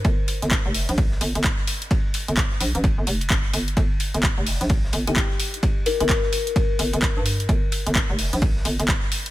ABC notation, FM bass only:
X:1
M:4/4
L:1/16
Q:"Swing 16ths" 1/4=129
K:Gm
V:1 name="FM bass" clef=bass
G,,,3 G,,,2 F,,,2 B,,,3 G,,, G,,,2 z3 | z3 G,,,3 B,,, A,,,2 G,,, F,,,4 G,,,2 | G,,,3 G,,,2 F,,,2 B,,,3 G,,, G,,,2 z3 | z3 G,,,3 z4 G,,, G,,,2 G,,3 |
G,,,3 G,,,2 F,,,2 B,,,3 G,,, G,,,2 z3 |]